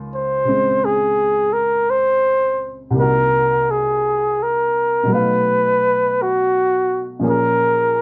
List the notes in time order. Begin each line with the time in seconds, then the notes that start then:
Already playing: C#2 C#3 A#3 D#4 F4
0.15 C5
0.45 C#3 G#3 C4
0.85 G#4
1.53 A#4
1.90 C5
2.91 C2 C3
2.95 A#3 D#4
3.00 F#4 A#4
3.71 G#4
4.43 A#4
5.03 B2 F#3
5.10 A3 D#4 B4
5.15 F5
6.22 F#4
7.19 A#2 F3 A#3 C#4
7.24 G#4
7.30 A#4